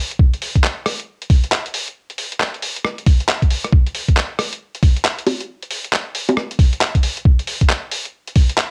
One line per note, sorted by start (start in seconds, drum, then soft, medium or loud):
0.12 closed hi-hat medium
0.19 kick loud
0.33 closed hi-hat soft
0.42 open hi-hat medium
0.55 kick medium
0.55 closed hi-hat medium
0.64 clap loud
0.86 cross-stick medium
0.86 open hi-hat loud
0.99 closed hi-hat medium
1.22 closed hi-hat soft
1.30 kick loud
1.30 open hi-hat loud
1.43 closed hi-hat medium
1.52 clap loud
1.66 closed hi-hat medium
1.74 open hi-hat loud
1.88 closed hi-hat medium
2.10 closed hi-hat soft
2.18 open hi-hat loud
2.32 closed hi-hat medium
2.40 clap loud
2.54 closed hi-hat soft
2.62 open hi-hat loud
2.76 closed hi-hat medium
2.84 cross-stick medium
2.98 closed hi-hat soft
3.06 kick loud
3.06 open hi-hat loud
3.20 closed hi-hat medium
3.28 clap loud
3.42 kick medium
3.42 closed hi-hat soft
3.50 open hi-hat loud
3.64 cross-stick soft
3.64 closed hi-hat medium
3.72 kick loud
3.86 closed hi-hat soft
3.94 open hi-hat loud
4.08 kick medium
4.08 closed hi-hat medium
4.17 clap loud
4.39 cross-stick medium
4.39 open hi-hat loud
4.53 closed hi-hat medium
4.75 closed hi-hat medium
4.83 kick loud
4.83 open hi-hat loud
4.97 closed hi-hat medium
5.05 clap loud
5.19 closed hi-hat medium
5.27 open hi-hat loud
5.27 high bongo medium
5.41 closed hi-hat medium
5.63 closed hi-hat soft
5.71 open hi-hat loud
5.85 closed hi-hat medium
5.93 clap loud
6.15 open hi-hat loud
6.29 closed hi-hat medium
6.29 high bongo medium
6.37 cross-stick medium
6.51 closed hi-hat medium
6.59 kick loud
6.59 open hi-hat loud
6.73 closed hi-hat medium
6.81 clap loud
6.95 kick medium
6.95 closed hi-hat medium
7.03 open hi-hat loud
7.17 closed hi-hat medium
7.25 kick loud
7.39 closed hi-hat soft
7.47 open hi-hat loud
7.61 kick medium
7.61 closed hi-hat medium
7.69 clap loud
7.91 open hi-hat loud
8.05 closed hi-hat medium
8.27 closed hi-hat medium
8.35 kick loud
8.35 open hi-hat loud
8.49 closed hi-hat medium
8.57 clap loud